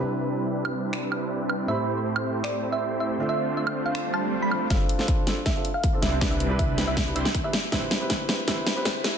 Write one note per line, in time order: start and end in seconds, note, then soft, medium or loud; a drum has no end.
0.00 1.65 C3 medium
0.00 1.66 G3 medium
0.00 1.66 C4 medium
0.00 1.66 D4 medium
0.00 1.66 E4 medium
0.00 1.67 G4 medium
0.00 1.66 B4 medium
0.00 1.67 B4 medium
0.65 high woodblock medium
0.93 finger snap medium
1.12 high woodblock soft
1.50 high woodblock medium
1.67 3.16 A2 medium
1.67 3.17 A3 medium
1.67 3.17 C4 medium
1.67 3.17 E4 medium
1.67 3.17 G4 medium
1.67 3.18 G4 medium
1.67 3.17 C5 medium
1.67 1.95 E5 medium
1.71 3.18 B5 medium
2.16 high woodblock medium
2.44 2.64 D5 medium
2.44 finger snap medium
2.72 2.92 E5 medium
3.00 3.20 E5 medium
3.18 4.67 D3 medium
3.18 4.68 A3 medium
3.18 4.68 C4 medium
3.18 4.68 D4 medium
3.18 4.68 F4 medium
3.18 4.69 F4 medium
3.18 4.69 A4 medium
3.18 4.68 C5 medium
3.18 4.68 E5 medium
3.29 3.49 E5 medium
3.57 3.77 E5 medium
3.67 high woodblock medium
3.86 4.05 F5 medium
3.95 finger snap medium
3.95 swell medium
4.14 4.33 A5 medium
4.14 high woodblock medium
4.42 4.62 B5 medium
4.52 high woodblock medium
4.70 4.80 G1 loud
4.70 4.82 G3 medium
4.70 4.96 C4 medium
4.70 4.82 C4 medium
4.70 4.97 D4 medium
4.70 4.82 D4 medium
4.70 4.82 F4 medium
4.70 4.97 F4 medium
4.70 4.97 A4 medium
4.70 4.82 C5 loud
4.70 4.97 F5 loud
4.70 kick medium
4.70 snare soft
4.70 closed hi-hat medium
4.89 closed hi-hat medium
4.98 5.24 C4 medium
4.98 5.25 D4 medium
4.98 5.25 F4 medium
4.98 5.25 A4 medium
4.98 snare soft
5.08 kick medium
5.08 closed hi-hat medium
5.26 5.37 C4 medium
5.26 5.37 D4 medium
5.26 5.37 F4 medium
5.26 5.38 A4 medium
5.26 snare soft
5.26 closed hi-hat medium
5.46 5.66 E5 medium
5.46 kick medium
5.46 snare soft
5.46 closed hi-hat medium
5.55 5.65 C4 medium
5.55 5.65 D4 medium
5.55 5.65 F4 medium
5.55 5.66 A4 medium
5.65 closed hi-hat medium
5.74 5.94 F5 medium
5.84 kick medium
5.84 closed hi-hat medium
5.92 5.99 C4 medium
5.92 5.99 D4 medium
5.92 6.00 F4 medium
5.92 6.00 A4 medium
6.02 6.10 C2 medium
6.02 6.10 G3 medium
6.02 6.10 C4 medium
6.02 6.10 D4 medium
6.02 6.10 E4 medium
6.02 6.10 B4 medium
6.02 6.22 E5 medium
6.02 snare medium
6.02 closed hi-hat medium
6.12 6.20 C2 loud
6.12 6.19 G3 medium
6.12 6.19 C4 medium
6.12 6.19 D4 medium
6.12 6.19 E4 medium
6.12 6.19 C5 medium
6.21 6.86 C2 loud
6.21 6.85 G3 medium
6.21 6.85 C4 medium
6.21 6.47 D4 medium
6.21 6.85 D4 medium
6.21 6.48 E4 medium
6.21 6.85 E4 medium
6.21 6.48 G4 medium
6.21 6.85 B4 medium
6.21 6.48 B4 medium
6.21 kick loud
6.21 snare medium
6.21 closed hi-hat medium
6.31 6.51 E5 medium
6.40 closed hi-hat medium
6.49 6.75 D4 medium
6.49 6.76 E4 medium
6.49 6.76 G4 medium
6.49 6.76 B4 loud
6.59 6.79 E5 medium
6.59 kick medium
6.59 closed hi-hat medium
6.77 6.88 D4 medium
6.77 6.88 E4 medium
6.77 6.88 G4 medium
6.77 6.89 B4 medium
6.77 snare medium
6.77 closed hi-hat medium
6.88 7.14 C2 loud
6.88 6.98 G3 medium
6.88 6.98 C4 medium
6.88 6.98 D4 medium
6.88 6.98 E4 medium
6.88 6.98 B4 medium
6.88 7.07 E5 medium
6.97 kick loud
6.97 snare medium
6.97 closed hi-hat medium
7.06 7.16 D4 medium
7.06 7.16 E4 medium
7.06 7.16 G4 medium
7.06 7.17 B4 medium
7.16 7.25 C2 loud
7.16 7.27 G3 medium
7.16 7.27 C4 medium
7.16 7.27 D4 medium
7.16 7.27 E4 medium
7.16 7.27 C5 loud
7.16 7.35 E5 medium
7.16 closed hi-hat medium
7.25 snare medium
7.35 kick medium
7.35 closed hi-hat medium
7.43 7.50 D4 medium
7.43 7.50 E4 medium
7.43 7.50 G4 medium
7.43 7.51 B4 medium
7.43 7.64 E5 loud
7.53 snare medium
7.53 closed hi-hat medium
7.71 7.82 A1 loud
7.71 7.83 A3 medium
7.71 7.98 C4 medium
7.71 7.83 C4 medium
7.71 7.98 E4 medium
7.71 7.83 E4 medium
7.71 7.83 G4 medium
7.71 7.99 G4 medium
7.71 7.99 B4 medium
7.71 7.83 C5 loud
7.71 7.99 E5 medium
7.71 kick loud
7.71 snare medium
7.71 closed hi-hat medium
7.91 snare medium
7.91 closed hi-hat medium
8.00 8.26 C4 medium
8.00 8.27 E4 medium
8.00 8.27 G4 medium
8.00 8.27 B4 medium
8.10 kick loud
8.10 snare medium
8.10 closed hi-hat medium
8.28 8.38 C4 medium
8.28 8.39 E4 medium
8.28 8.39 G4 medium
8.28 8.39 B4 medium
8.28 snare medium
8.28 closed hi-hat medium
8.47 8.57 A1 medium
8.47 8.59 A3 medium
8.47 8.74 C4 medium
8.47 8.59 C4 medium
8.47 8.74 E4 medium
8.47 8.59 E4 medium
8.47 8.59 G4 medium
8.47 8.74 G4 medium
8.47 8.75 B4 medium
8.47 8.59 C5 medium
8.47 8.74 E5 medium
8.47 kick loud
8.47 snare medium
8.47 closed hi-hat medium
8.67 snare medium
8.67 closed hi-hat medium
8.75 9.02 C4 medium
8.75 9.02 E4 medium
8.75 9.02 G4 medium
8.75 9.03 B4 medium
8.85 kick loud
8.85 snare medium
8.85 closed hi-hat medium
9.03 9.14 C4 medium
9.03 9.14 E4 medium
9.03 9.15 G4 medium
9.03 9.15 B4 medium
9.03 snare medium
9.03 closed hi-hat medium